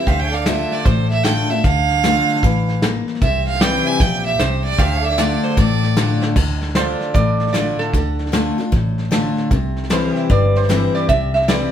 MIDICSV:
0, 0, Header, 1, 7, 480
1, 0, Start_track
1, 0, Key_signature, -1, "minor"
1, 0, Tempo, 393443
1, 88, Time_signature, 4, 2, 24, 8
1, 14294, End_track
2, 0, Start_track
2, 0, Title_t, "Fiddle"
2, 0, Program_c, 0, 110
2, 81, Note_on_c, 0, 77, 88
2, 243, Note_on_c, 0, 79, 98
2, 261, Note_off_c, 0, 77, 0
2, 409, Note_on_c, 0, 77, 87
2, 427, Note_off_c, 0, 79, 0
2, 571, Note_on_c, 0, 76, 84
2, 589, Note_off_c, 0, 77, 0
2, 876, Note_on_c, 0, 74, 95
2, 894, Note_off_c, 0, 76, 0
2, 1041, Note_on_c, 0, 72, 83
2, 1059, Note_off_c, 0, 74, 0
2, 1333, Note_off_c, 0, 72, 0
2, 1341, Note_on_c, 0, 76, 102
2, 1511, Note_on_c, 0, 79, 97
2, 1529, Note_off_c, 0, 76, 0
2, 1831, Note_on_c, 0, 76, 91
2, 1849, Note_off_c, 0, 79, 0
2, 1999, Note_on_c, 0, 77, 103
2, 2017, Note_off_c, 0, 76, 0
2, 3443, Note_off_c, 0, 77, 0
2, 3922, Note_on_c, 0, 76, 87
2, 4212, Note_off_c, 0, 76, 0
2, 4233, Note_on_c, 0, 77, 97
2, 4405, Note_on_c, 0, 79, 102
2, 4423, Note_off_c, 0, 77, 0
2, 4717, Note_on_c, 0, 80, 106
2, 4735, Note_off_c, 0, 79, 0
2, 4888, Note_on_c, 0, 79, 94
2, 4906, Note_off_c, 0, 80, 0
2, 5183, Note_off_c, 0, 79, 0
2, 5190, Note_on_c, 0, 76, 98
2, 5359, Note_on_c, 0, 72, 83
2, 5377, Note_off_c, 0, 76, 0
2, 5656, Note_off_c, 0, 72, 0
2, 5664, Note_on_c, 0, 74, 111
2, 5850, Note_on_c, 0, 77, 104
2, 5868, Note_off_c, 0, 74, 0
2, 6154, Note_on_c, 0, 76, 107
2, 6172, Note_off_c, 0, 77, 0
2, 6320, Note_on_c, 0, 74, 93
2, 6339, Note_off_c, 0, 76, 0
2, 6636, Note_on_c, 0, 72, 90
2, 6654, Note_off_c, 0, 74, 0
2, 6807, Note_on_c, 0, 74, 87
2, 6826, Note_off_c, 0, 72, 0
2, 7595, Note_off_c, 0, 74, 0
2, 14294, End_track
3, 0, Start_track
3, 0, Title_t, "Pedal steel guitar"
3, 0, Program_c, 1, 26
3, 89, Note_on_c, 1, 67, 63
3, 106, Note_on_c, 1, 72, 69
3, 113, Note_on_c, 1, 76, 66
3, 357, Note_off_c, 1, 76, 0
3, 357, Note_on_c, 1, 77, 66
3, 394, Note_off_c, 1, 67, 0
3, 394, Note_on_c, 1, 69, 63
3, 411, Note_off_c, 1, 72, 0
3, 411, Note_on_c, 1, 74, 69
3, 3889, Note_off_c, 1, 69, 0
3, 3898, Note_off_c, 1, 74, 0
3, 3901, Note_off_c, 1, 77, 0
3, 4407, Note_on_c, 1, 67, 74
3, 4417, Note_on_c, 1, 74, 68
3, 4436, Note_on_c, 1, 77, 68
3, 4680, Note_off_c, 1, 77, 0
3, 4680, Note_on_c, 1, 76, 68
3, 4722, Note_off_c, 1, 74, 0
3, 4722, Note_on_c, 1, 72, 68
3, 5831, Note_off_c, 1, 67, 0
3, 5836, Note_off_c, 1, 72, 0
3, 5846, Note_off_c, 1, 76, 0
3, 5847, Note_on_c, 1, 67, 69
3, 5854, Note_on_c, 1, 72, 67
3, 5872, Note_on_c, 1, 76, 68
3, 6116, Note_off_c, 1, 76, 0
3, 6116, Note_on_c, 1, 77, 68
3, 6152, Note_off_c, 1, 67, 0
3, 6152, Note_on_c, 1, 69, 69
3, 6159, Note_off_c, 1, 72, 0
3, 6159, Note_on_c, 1, 74, 67
3, 7746, Note_off_c, 1, 69, 0
3, 7749, Note_off_c, 1, 74, 0
3, 7759, Note_off_c, 1, 77, 0
3, 8256, Note_on_c, 1, 69, 66
3, 8272, Note_on_c, 1, 74, 64
3, 8281, Note_on_c, 1, 77, 62
3, 11579, Note_off_c, 1, 69, 0
3, 11586, Note_off_c, 1, 74, 0
3, 11591, Note_off_c, 1, 77, 0
3, 12094, Note_on_c, 1, 69, 70
3, 12105, Note_on_c, 1, 72, 67
3, 12121, Note_on_c, 1, 77, 66
3, 12365, Note_off_c, 1, 77, 0
3, 12365, Note_on_c, 1, 76, 66
3, 12399, Note_off_c, 1, 69, 0
3, 12399, Note_on_c, 1, 67, 70
3, 14294, Note_off_c, 1, 67, 0
3, 14294, Note_off_c, 1, 72, 0
3, 14294, Note_off_c, 1, 76, 0
3, 14294, End_track
4, 0, Start_track
4, 0, Title_t, "Resonator guitar played with a steel bar"
4, 0, Program_c, 2, 25
4, 8244, Note_on_c, 2, 72, 96
4, 8707, Note_off_c, 2, 72, 0
4, 8712, Note_on_c, 2, 74, 106
4, 9167, Note_off_c, 2, 74, 0
4, 9182, Note_on_c, 2, 74, 91
4, 9505, Note_on_c, 2, 69, 83
4, 9512, Note_off_c, 2, 74, 0
4, 10115, Note_off_c, 2, 69, 0
4, 12105, Note_on_c, 2, 72, 78
4, 12577, Note_on_c, 2, 74, 93
4, 12590, Note_off_c, 2, 72, 0
4, 12890, Note_on_c, 2, 72, 92
4, 12891, Note_off_c, 2, 74, 0
4, 13356, Note_on_c, 2, 74, 90
4, 13378, Note_off_c, 2, 72, 0
4, 13521, Note_off_c, 2, 74, 0
4, 13526, Note_on_c, 2, 76, 100
4, 13821, Note_off_c, 2, 76, 0
4, 13835, Note_on_c, 2, 76, 93
4, 14006, Note_on_c, 2, 74, 96
4, 14012, Note_off_c, 2, 76, 0
4, 14294, Note_off_c, 2, 74, 0
4, 14294, End_track
5, 0, Start_track
5, 0, Title_t, "Steel-string acoustic guitar"
5, 0, Program_c, 3, 25
5, 97, Note_on_c, 3, 50, 85
5, 553, Note_off_c, 3, 50, 0
5, 568, Note_on_c, 3, 50, 80
5, 578, Note_on_c, 3, 57, 81
5, 584, Note_on_c, 3, 62, 89
5, 593, Note_on_c, 3, 65, 86
5, 1031, Note_off_c, 3, 50, 0
5, 1036, Note_off_c, 3, 57, 0
5, 1039, Note_off_c, 3, 62, 0
5, 1043, Note_off_c, 3, 65, 0
5, 1048, Note_on_c, 3, 45, 91
5, 1518, Note_on_c, 3, 50, 77
5, 1528, Note_on_c, 3, 57, 90
5, 1538, Note_on_c, 3, 62, 88
5, 1541, Note_on_c, 3, 65, 94
5, 1817, Note_off_c, 3, 65, 0
5, 1820, Note_off_c, 3, 50, 0
5, 1825, Note_off_c, 3, 57, 0
5, 1830, Note_off_c, 3, 62, 0
5, 1832, Note_on_c, 3, 65, 54
5, 1857, Note_on_c, 3, 62, 49
5, 1974, Note_off_c, 3, 45, 0
5, 1998, Note_off_c, 3, 65, 0
5, 2010, Note_on_c, 3, 50, 89
5, 2011, Note_off_c, 3, 62, 0
5, 2466, Note_off_c, 3, 50, 0
5, 2481, Note_on_c, 3, 50, 86
5, 2494, Note_on_c, 3, 57, 91
5, 2501, Note_on_c, 3, 62, 94
5, 2504, Note_on_c, 3, 65, 96
5, 2947, Note_off_c, 3, 50, 0
5, 2953, Note_off_c, 3, 57, 0
5, 2957, Note_off_c, 3, 62, 0
5, 2958, Note_off_c, 3, 65, 0
5, 2978, Note_on_c, 3, 52, 95
5, 3436, Note_off_c, 3, 52, 0
5, 3455, Note_on_c, 3, 58, 79
5, 3914, Note_off_c, 3, 58, 0
5, 3927, Note_on_c, 3, 48, 90
5, 4412, Note_on_c, 3, 52, 87
5, 4419, Note_on_c, 3, 55, 87
5, 4425, Note_on_c, 3, 60, 96
5, 4435, Note_on_c, 3, 64, 96
5, 4852, Note_off_c, 3, 48, 0
5, 4872, Note_off_c, 3, 52, 0
5, 4875, Note_off_c, 3, 55, 0
5, 4878, Note_off_c, 3, 60, 0
5, 4883, Note_off_c, 3, 64, 0
5, 4896, Note_on_c, 3, 46, 101
5, 5353, Note_off_c, 3, 46, 0
5, 5374, Note_on_c, 3, 48, 84
5, 5832, Note_off_c, 3, 48, 0
5, 5846, Note_on_c, 3, 50, 94
5, 6302, Note_off_c, 3, 50, 0
5, 6317, Note_on_c, 3, 50, 95
5, 6323, Note_on_c, 3, 57, 99
5, 6336, Note_on_c, 3, 62, 88
5, 6340, Note_on_c, 3, 65, 91
5, 6783, Note_off_c, 3, 50, 0
5, 6787, Note_off_c, 3, 57, 0
5, 6793, Note_off_c, 3, 62, 0
5, 6795, Note_off_c, 3, 65, 0
5, 6802, Note_on_c, 3, 45, 103
5, 7278, Note_on_c, 3, 50, 81
5, 7281, Note_on_c, 3, 57, 89
5, 7286, Note_on_c, 3, 62, 98
5, 7293, Note_on_c, 3, 65, 88
5, 7729, Note_off_c, 3, 45, 0
5, 7744, Note_off_c, 3, 50, 0
5, 7746, Note_off_c, 3, 57, 0
5, 7748, Note_off_c, 3, 62, 0
5, 7752, Note_off_c, 3, 65, 0
5, 7762, Note_on_c, 3, 50, 88
5, 8226, Note_off_c, 3, 50, 0
5, 8240, Note_on_c, 3, 50, 72
5, 8246, Note_on_c, 3, 57, 78
5, 8255, Note_on_c, 3, 62, 91
5, 8259, Note_on_c, 3, 65, 90
5, 8705, Note_off_c, 3, 50, 0
5, 8708, Note_off_c, 3, 57, 0
5, 8713, Note_off_c, 3, 62, 0
5, 8715, Note_off_c, 3, 65, 0
5, 8728, Note_on_c, 3, 45, 87
5, 9197, Note_on_c, 3, 50, 74
5, 9209, Note_on_c, 3, 57, 87
5, 9217, Note_on_c, 3, 62, 81
5, 9223, Note_on_c, 3, 65, 90
5, 9652, Note_off_c, 3, 45, 0
5, 9664, Note_off_c, 3, 50, 0
5, 9670, Note_off_c, 3, 57, 0
5, 9674, Note_off_c, 3, 62, 0
5, 9677, Note_off_c, 3, 65, 0
5, 9691, Note_on_c, 3, 50, 91
5, 10137, Note_off_c, 3, 50, 0
5, 10151, Note_on_c, 3, 50, 80
5, 10162, Note_on_c, 3, 57, 90
5, 10164, Note_on_c, 3, 62, 84
5, 10173, Note_on_c, 3, 65, 90
5, 10453, Note_off_c, 3, 65, 0
5, 10455, Note_off_c, 3, 50, 0
5, 10461, Note_off_c, 3, 57, 0
5, 10462, Note_off_c, 3, 62, 0
5, 10468, Note_on_c, 3, 65, 56
5, 10492, Note_on_c, 3, 62, 47
5, 10635, Note_off_c, 3, 65, 0
5, 10638, Note_on_c, 3, 45, 91
5, 10647, Note_off_c, 3, 62, 0
5, 11112, Note_on_c, 3, 50, 82
5, 11121, Note_on_c, 3, 57, 84
5, 11132, Note_on_c, 3, 62, 84
5, 11132, Note_on_c, 3, 65, 98
5, 11568, Note_off_c, 3, 45, 0
5, 11582, Note_off_c, 3, 50, 0
5, 11587, Note_off_c, 3, 57, 0
5, 11592, Note_off_c, 3, 62, 0
5, 11592, Note_off_c, 3, 65, 0
5, 11605, Note_on_c, 3, 48, 91
5, 12077, Note_on_c, 3, 52, 90
5, 12088, Note_on_c, 3, 55, 85
5, 12101, Note_on_c, 3, 60, 89
5, 12109, Note_on_c, 3, 64, 91
5, 12532, Note_off_c, 3, 48, 0
5, 12545, Note_off_c, 3, 52, 0
5, 12550, Note_off_c, 3, 55, 0
5, 12557, Note_off_c, 3, 60, 0
5, 12561, Note_off_c, 3, 64, 0
5, 12562, Note_on_c, 3, 43, 97
5, 13041, Note_on_c, 3, 52, 83
5, 13051, Note_on_c, 3, 55, 79
5, 13058, Note_on_c, 3, 60, 85
5, 13064, Note_on_c, 3, 64, 90
5, 13491, Note_off_c, 3, 43, 0
5, 13508, Note_off_c, 3, 52, 0
5, 13513, Note_off_c, 3, 55, 0
5, 13516, Note_off_c, 3, 60, 0
5, 13519, Note_off_c, 3, 64, 0
5, 13534, Note_on_c, 3, 48, 90
5, 14007, Note_on_c, 3, 52, 82
5, 14014, Note_on_c, 3, 55, 86
5, 14020, Note_on_c, 3, 60, 94
5, 14024, Note_on_c, 3, 64, 105
5, 14294, Note_off_c, 3, 48, 0
5, 14294, Note_off_c, 3, 52, 0
5, 14294, Note_off_c, 3, 55, 0
5, 14294, Note_off_c, 3, 60, 0
5, 14294, Note_off_c, 3, 64, 0
5, 14294, End_track
6, 0, Start_track
6, 0, Title_t, "Fingered electric bass"
6, 0, Program_c, 4, 33
6, 81, Note_on_c, 4, 38, 81
6, 782, Note_off_c, 4, 38, 0
6, 1044, Note_on_c, 4, 33, 82
6, 1744, Note_off_c, 4, 33, 0
6, 2003, Note_on_c, 4, 38, 85
6, 2703, Note_off_c, 4, 38, 0
6, 2963, Note_on_c, 4, 33, 88
6, 3663, Note_off_c, 4, 33, 0
6, 3923, Note_on_c, 4, 36, 95
6, 4622, Note_off_c, 4, 36, 0
6, 4879, Note_on_c, 4, 34, 83
6, 5290, Note_off_c, 4, 34, 0
6, 5360, Note_on_c, 4, 36, 91
6, 5770, Note_off_c, 4, 36, 0
6, 5838, Note_on_c, 4, 38, 94
6, 6539, Note_off_c, 4, 38, 0
6, 6796, Note_on_c, 4, 33, 84
6, 7497, Note_off_c, 4, 33, 0
6, 7754, Note_on_c, 4, 38, 86
6, 8456, Note_off_c, 4, 38, 0
6, 8717, Note_on_c, 4, 33, 78
6, 9418, Note_off_c, 4, 33, 0
6, 9680, Note_on_c, 4, 38, 90
6, 10381, Note_off_c, 4, 38, 0
6, 10639, Note_on_c, 4, 33, 79
6, 11340, Note_off_c, 4, 33, 0
6, 11602, Note_on_c, 4, 36, 90
6, 12303, Note_off_c, 4, 36, 0
6, 12562, Note_on_c, 4, 31, 77
6, 13263, Note_off_c, 4, 31, 0
6, 13527, Note_on_c, 4, 36, 88
6, 14227, Note_off_c, 4, 36, 0
6, 14294, End_track
7, 0, Start_track
7, 0, Title_t, "Drums"
7, 82, Note_on_c, 9, 38, 35
7, 84, Note_on_c, 9, 36, 104
7, 204, Note_off_c, 9, 38, 0
7, 206, Note_off_c, 9, 36, 0
7, 394, Note_on_c, 9, 38, 33
7, 516, Note_off_c, 9, 38, 0
7, 559, Note_on_c, 9, 38, 115
7, 559, Note_on_c, 9, 44, 85
7, 681, Note_off_c, 9, 38, 0
7, 681, Note_off_c, 9, 44, 0
7, 873, Note_on_c, 9, 38, 37
7, 957, Note_off_c, 9, 38, 0
7, 957, Note_on_c, 9, 38, 33
7, 1041, Note_off_c, 9, 38, 0
7, 1041, Note_on_c, 9, 38, 33
7, 1044, Note_on_c, 9, 36, 112
7, 1163, Note_off_c, 9, 38, 0
7, 1166, Note_off_c, 9, 36, 0
7, 1349, Note_on_c, 9, 38, 35
7, 1471, Note_off_c, 9, 38, 0
7, 1519, Note_on_c, 9, 38, 107
7, 1519, Note_on_c, 9, 44, 83
7, 1641, Note_off_c, 9, 38, 0
7, 1641, Note_off_c, 9, 44, 0
7, 1831, Note_on_c, 9, 38, 36
7, 1917, Note_off_c, 9, 38, 0
7, 1917, Note_on_c, 9, 38, 34
7, 2003, Note_off_c, 9, 38, 0
7, 2003, Note_on_c, 9, 38, 34
7, 2004, Note_on_c, 9, 36, 109
7, 2125, Note_off_c, 9, 38, 0
7, 2126, Note_off_c, 9, 36, 0
7, 2314, Note_on_c, 9, 38, 37
7, 2402, Note_off_c, 9, 38, 0
7, 2402, Note_on_c, 9, 38, 31
7, 2487, Note_off_c, 9, 38, 0
7, 2487, Note_on_c, 9, 38, 113
7, 2487, Note_on_c, 9, 44, 89
7, 2609, Note_off_c, 9, 38, 0
7, 2609, Note_off_c, 9, 44, 0
7, 2796, Note_on_c, 9, 38, 38
7, 2879, Note_off_c, 9, 38, 0
7, 2879, Note_on_c, 9, 38, 32
7, 2961, Note_off_c, 9, 38, 0
7, 2961, Note_on_c, 9, 38, 34
7, 2965, Note_on_c, 9, 36, 108
7, 3083, Note_off_c, 9, 38, 0
7, 3087, Note_off_c, 9, 36, 0
7, 3274, Note_on_c, 9, 38, 36
7, 3396, Note_off_c, 9, 38, 0
7, 3444, Note_on_c, 9, 38, 94
7, 3444, Note_on_c, 9, 44, 80
7, 3566, Note_off_c, 9, 38, 0
7, 3566, Note_off_c, 9, 44, 0
7, 3755, Note_on_c, 9, 38, 36
7, 3842, Note_off_c, 9, 38, 0
7, 3842, Note_on_c, 9, 38, 32
7, 3919, Note_off_c, 9, 38, 0
7, 3919, Note_on_c, 9, 38, 35
7, 3925, Note_on_c, 9, 36, 107
7, 4041, Note_off_c, 9, 38, 0
7, 4047, Note_off_c, 9, 36, 0
7, 4231, Note_on_c, 9, 38, 36
7, 4323, Note_off_c, 9, 38, 0
7, 4323, Note_on_c, 9, 38, 35
7, 4403, Note_off_c, 9, 38, 0
7, 4403, Note_on_c, 9, 38, 107
7, 4403, Note_on_c, 9, 44, 89
7, 4525, Note_off_c, 9, 38, 0
7, 4525, Note_off_c, 9, 44, 0
7, 4710, Note_on_c, 9, 38, 40
7, 4793, Note_off_c, 9, 38, 0
7, 4793, Note_on_c, 9, 38, 34
7, 4877, Note_off_c, 9, 38, 0
7, 4877, Note_on_c, 9, 38, 35
7, 4881, Note_on_c, 9, 36, 113
7, 4999, Note_off_c, 9, 38, 0
7, 5003, Note_off_c, 9, 36, 0
7, 5189, Note_on_c, 9, 38, 34
7, 5311, Note_off_c, 9, 38, 0
7, 5361, Note_on_c, 9, 38, 109
7, 5361, Note_on_c, 9, 44, 81
7, 5483, Note_off_c, 9, 38, 0
7, 5483, Note_off_c, 9, 44, 0
7, 5667, Note_on_c, 9, 38, 36
7, 5754, Note_off_c, 9, 38, 0
7, 5754, Note_on_c, 9, 38, 34
7, 5836, Note_off_c, 9, 38, 0
7, 5836, Note_on_c, 9, 38, 34
7, 5838, Note_on_c, 9, 36, 114
7, 5958, Note_off_c, 9, 38, 0
7, 5960, Note_off_c, 9, 36, 0
7, 6146, Note_on_c, 9, 38, 35
7, 6236, Note_off_c, 9, 38, 0
7, 6236, Note_on_c, 9, 38, 33
7, 6320, Note_off_c, 9, 38, 0
7, 6320, Note_on_c, 9, 38, 113
7, 6320, Note_on_c, 9, 44, 89
7, 6442, Note_off_c, 9, 38, 0
7, 6442, Note_off_c, 9, 44, 0
7, 6630, Note_on_c, 9, 38, 38
7, 6714, Note_off_c, 9, 38, 0
7, 6714, Note_on_c, 9, 38, 36
7, 6798, Note_on_c, 9, 36, 110
7, 6800, Note_off_c, 9, 38, 0
7, 6800, Note_on_c, 9, 38, 36
7, 6920, Note_off_c, 9, 36, 0
7, 6922, Note_off_c, 9, 38, 0
7, 7111, Note_on_c, 9, 38, 38
7, 7233, Note_off_c, 9, 38, 0
7, 7281, Note_on_c, 9, 38, 104
7, 7281, Note_on_c, 9, 44, 81
7, 7403, Note_off_c, 9, 38, 0
7, 7403, Note_off_c, 9, 44, 0
7, 7590, Note_on_c, 9, 38, 65
7, 7712, Note_off_c, 9, 38, 0
7, 7759, Note_on_c, 9, 36, 106
7, 7759, Note_on_c, 9, 38, 34
7, 7759, Note_on_c, 9, 49, 99
7, 7881, Note_off_c, 9, 36, 0
7, 7881, Note_off_c, 9, 38, 0
7, 7881, Note_off_c, 9, 49, 0
7, 8071, Note_on_c, 9, 38, 34
7, 8153, Note_off_c, 9, 38, 0
7, 8153, Note_on_c, 9, 38, 32
7, 8235, Note_off_c, 9, 38, 0
7, 8235, Note_on_c, 9, 38, 106
7, 8235, Note_on_c, 9, 44, 82
7, 8357, Note_off_c, 9, 38, 0
7, 8357, Note_off_c, 9, 44, 0
7, 8548, Note_on_c, 9, 38, 36
7, 8670, Note_off_c, 9, 38, 0
7, 8716, Note_on_c, 9, 38, 33
7, 8718, Note_on_c, 9, 36, 111
7, 8838, Note_off_c, 9, 38, 0
7, 8840, Note_off_c, 9, 36, 0
7, 9026, Note_on_c, 9, 38, 36
7, 9115, Note_off_c, 9, 38, 0
7, 9115, Note_on_c, 9, 38, 33
7, 9197, Note_off_c, 9, 38, 0
7, 9197, Note_on_c, 9, 38, 93
7, 9197, Note_on_c, 9, 44, 74
7, 9319, Note_off_c, 9, 38, 0
7, 9319, Note_off_c, 9, 44, 0
7, 9512, Note_on_c, 9, 38, 33
7, 9634, Note_off_c, 9, 38, 0
7, 9680, Note_on_c, 9, 38, 32
7, 9681, Note_on_c, 9, 36, 97
7, 9802, Note_off_c, 9, 38, 0
7, 9803, Note_off_c, 9, 36, 0
7, 9992, Note_on_c, 9, 38, 33
7, 10077, Note_off_c, 9, 38, 0
7, 10077, Note_on_c, 9, 38, 35
7, 10164, Note_off_c, 9, 38, 0
7, 10164, Note_on_c, 9, 38, 111
7, 10164, Note_on_c, 9, 44, 80
7, 10286, Note_off_c, 9, 38, 0
7, 10286, Note_off_c, 9, 44, 0
7, 10474, Note_on_c, 9, 38, 37
7, 10596, Note_off_c, 9, 38, 0
7, 10641, Note_on_c, 9, 38, 35
7, 10642, Note_on_c, 9, 36, 107
7, 10763, Note_off_c, 9, 38, 0
7, 10764, Note_off_c, 9, 36, 0
7, 10955, Note_on_c, 9, 38, 38
7, 11035, Note_off_c, 9, 38, 0
7, 11035, Note_on_c, 9, 38, 34
7, 11123, Note_off_c, 9, 38, 0
7, 11123, Note_on_c, 9, 38, 93
7, 11123, Note_on_c, 9, 44, 78
7, 11245, Note_off_c, 9, 38, 0
7, 11245, Note_off_c, 9, 44, 0
7, 11432, Note_on_c, 9, 38, 34
7, 11554, Note_off_c, 9, 38, 0
7, 11602, Note_on_c, 9, 36, 101
7, 11602, Note_on_c, 9, 38, 33
7, 11724, Note_off_c, 9, 36, 0
7, 11724, Note_off_c, 9, 38, 0
7, 11911, Note_on_c, 9, 38, 32
7, 11999, Note_off_c, 9, 38, 0
7, 11999, Note_on_c, 9, 38, 35
7, 12081, Note_off_c, 9, 38, 0
7, 12081, Note_on_c, 9, 38, 111
7, 12081, Note_on_c, 9, 44, 82
7, 12203, Note_off_c, 9, 38, 0
7, 12203, Note_off_c, 9, 44, 0
7, 12390, Note_on_c, 9, 38, 37
7, 12512, Note_off_c, 9, 38, 0
7, 12562, Note_on_c, 9, 38, 34
7, 12564, Note_on_c, 9, 36, 106
7, 12684, Note_off_c, 9, 38, 0
7, 12686, Note_off_c, 9, 36, 0
7, 12876, Note_on_c, 9, 38, 36
7, 12963, Note_off_c, 9, 38, 0
7, 12963, Note_on_c, 9, 38, 31
7, 13048, Note_off_c, 9, 38, 0
7, 13048, Note_on_c, 9, 38, 100
7, 13048, Note_on_c, 9, 44, 78
7, 13170, Note_off_c, 9, 38, 0
7, 13170, Note_off_c, 9, 44, 0
7, 13364, Note_on_c, 9, 38, 33
7, 13486, Note_off_c, 9, 38, 0
7, 13529, Note_on_c, 9, 36, 102
7, 13534, Note_on_c, 9, 38, 33
7, 13651, Note_off_c, 9, 36, 0
7, 13656, Note_off_c, 9, 38, 0
7, 13841, Note_on_c, 9, 38, 34
7, 13930, Note_off_c, 9, 38, 0
7, 13930, Note_on_c, 9, 38, 33
7, 14011, Note_off_c, 9, 38, 0
7, 14011, Note_on_c, 9, 38, 115
7, 14011, Note_on_c, 9, 44, 87
7, 14133, Note_off_c, 9, 38, 0
7, 14133, Note_off_c, 9, 44, 0
7, 14294, End_track
0, 0, End_of_file